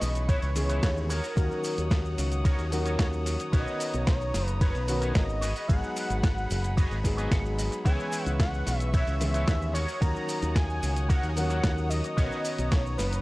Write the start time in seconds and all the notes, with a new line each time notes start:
Already playing: E3 G#3 B3 C#4 E4 G#4 B4 D#5 C#6
0.01 B1, snare, open hi-hat, cabasa, shaker
0.15 closed hi-hat, cabasa, shaker
0.28 E4 G#4 B4 C#5, kick, closed hi-hat, ride, cabasa, shaker
0.42 C#2, closed hi-hat, shaker
0.56 E3 G#3 B3 C#4 G#4 C#5, open hi-hat, cabasa, shaker
0.69 E4 G#4 B4 C#5, closed hi-hat, cabasa, shaker
0.83 D#2, kick, snare, closed hi-hat, ride, cabasa, shaker
0.97 shaker
1.09 D#4 F#4 A#4 C#5 F#5 D#6, open hi-hat, cabasa, shaker
1.24 open hi-hat, cabasa, shaker
1.36 D#2 D#3 F#3 A#3 C#4 F#4, kick, closed hi-hat, ride, cabasa, shaker
1.51 shaker
1.64 open hi-hat, cabasa, shaker
1.77 D#2, closed hi-hat, cabasa, shaker
1.90 kick, snare, closed hi-hat, ride, cabasa, shaker
2.05 shaker
2.18 C#2, open hi-hat, cabasa, shaker
2.32 closed hi-hat, cabasa, shaker
2.44 D#4 F#4 A#4 C#5, kick, closed hi-hat, ride, cabasa, shaker
2.59 D#2, closed hi-hat, shaker
2.71 D#3 F#3 A#3 C#4 F#4, open hi-hat, cabasa, shaker
2.85 D#4 F#4 A#4 C#5, closed hi-hat, cabasa, shaker
2.99 D#2, kick, snare, closed hi-hat, ride, cabasa, shaker
3.13 shaker
3.25 muted clean electric guitar stroke, open hi-hat, cabasa, shaker
3.39 muted clean electric guitar stroke, closed hi-hat, cabasa, shaker
3.52 B1 D#3 B3 C#4 D#4 F#4 A#4 B4 C#5 D#5 A#5, kick, closed hi-hat, ride, cabasa, shaker
3.67 shaker
3.80 open hi-hat, cabasa, shaker
3.93 B1, closed hi-hat, cabasa, shaker
4.07 C#5, kick, snare, closed hi-hat, ride, cabasa, shaker
4.21 shaker
4.34 F#1, snare, open hi-hat, cabasa, shaker
4.48 closed hi-hat, cabasa, shaker
4.61 D#4 A#4 B4 C#5, kick, closed hi-hat, ride, cabasa, shaker
4.75 B1, closed hi-hat, shaker
4.88 D#3 B3 C#4 F#4, open hi-hat, cabasa, shaker
5.01 D#4 A#4 B4 C#5, closed hi-hat, cabasa, shaker
5.14 G#1 D#5, kick, snare, closed hi-hat, ride, cabasa, shaker
5.29 shaker
5.41 F#4 G#4 B4 D#5 F#5 B5, open hi-hat, cabasa, shaker
5.56 open hi-hat, cabasa, shaker
5.68 G#1 F#3 G#3 B3 D#4 G#4 F#5, kick, closed hi-hat, ride, cabasa, shaker
5.83 shaker
5.96 open hi-hat, cabasa, shaker
6.10 G#1, closed hi-hat, cabasa, shaker
6.23 kick, snare, closed hi-hat, ride, cabasa, shaker
6.38 shaker
6.50 F#1, open hi-hat, cabasa, shaker
6.64 closed hi-hat, cabasa, shaker
6.77 F#4 G#4 B4 D#5, kick, closed hi-hat, ride, cabasa, shaker
6.91 G#1, closed hi-hat, shaker
7.04 F#3 G#3 B3 D#4 G#4, kick, open hi-hat, cabasa, shaker
7.17 F#4 G#4 B4 D#5, closed hi-hat, cabasa, shaker
7.31 G#1 F#5, kick, snare, closed hi-hat, ride, cabasa, shaker
7.45 shaker
7.58 D#5, muted clean electric guitar stroke, open hi-hat, cabasa, shaker
7.71 muted clean electric guitar stroke, closed hi-hat, cabasa, shaker
7.84 C#2 E3 G#3 B3 C#4 E4 G#4 B4 C#5 E5 G#5 C#6, kick, closed hi-hat, ride, cabasa, shaker
8.00 shaker
8.12 open hi-hat, cabasa, shaker
8.26 C#2, closed hi-hat, cabasa, shaker
8.39 F#5, kick, snare, closed hi-hat, ride, cabasa, shaker
8.54 shaker
8.67 B1, snare, open hi-hat, cabasa, shaker
8.80 closed hi-hat, cabasa, shaker
8.93 E4 G#4 B4 C#5 E5, kick, closed hi-hat, ride, cabasa, shaker
9.07 C#2, closed hi-hat, shaker
9.20 E3 G#3 B3 C#4 G#4 E5, open hi-hat, cabasa, shaker
9.33 E4 G#4 B4 C#5, closed hi-hat, cabasa, shaker
9.48 D#2, kick, snare, closed hi-hat, ride, cabasa, shaker
9.62 shaker
9.73 D#4 F#4 A#4 C#5 F#5 D#6, open hi-hat, cabasa, shaker
9.88 open hi-hat, cabasa, shaker
10.00 D#2 D#3 F#3 A#3 C#4 F#4 A#5, kick, closed hi-hat, ride, cabasa, shaker
10.16 shaker
10.29 open hi-hat, cabasa, shaker
10.42 D#2, closed hi-hat, cabasa, shaker
10.55 G#5, kick, snare, closed hi-hat, ride, cabasa, shaker
10.70 shaker
10.83 C#2, open hi-hat, cabasa, shaker
10.96 closed hi-hat, cabasa, shaker
11.09 D#4 F#4 A#4 C#5 F#5, kick, closed hi-hat, ride, cabasa, shaker
11.23 D#2, closed hi-hat, shaker
11.29 G#5
11.36 D#3 F#3 A#3 C#4 F#4 F#5, open hi-hat, cabasa, shaker
11.49 D#4 F#4 A#4 C#5, closed hi-hat, cabasa, shaker
11.64 D#2, kick, snare, closed hi-hat, ride, cabasa, shaker
11.78 shaker
11.90 D#5, muted clean electric guitar stroke, open hi-hat, cabasa, shaker
12.03 muted clean electric guitar stroke, closed hi-hat, cabasa, shaker
12.17 B1 D#3 B3 C#4 D#4 F#4 A#4 B4 C#5 D#5 A#5, kick, closed hi-hat, ride, cabasa, shaker
12.32 shaker
12.45 open hi-hat, cabasa, shaker
12.58 B1, closed hi-hat, cabasa, shaker
12.71 C#5, kick, snare, closed hi-hat, ride, cabasa, shaker
12.86 shaker
12.98 F#1 B4, snare, open hi-hat, cabasa, shaker
13.12 closed hi-hat, cabasa, shaker